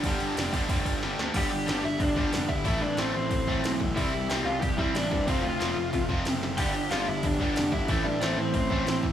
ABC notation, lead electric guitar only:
X:1
M:4/4
L:1/8
Q:1/4=184
K:Gmix
V:1 name="Lead electric guitar"
z8 | [Gg]3 [Ee] [Dd]3 [Ee]- | [Ee] [Dd] [Cc] [Cc]4 z | [Ee]2 z [Ff] [Gg] [Ee] [Dd]2 |
[Cc] [Ff]4 z3 | [Gg]2 [Ff] [Ee] [Dd]3 [Ee]- | [Ee] [Dd] [Cc] [Cc]4 z |]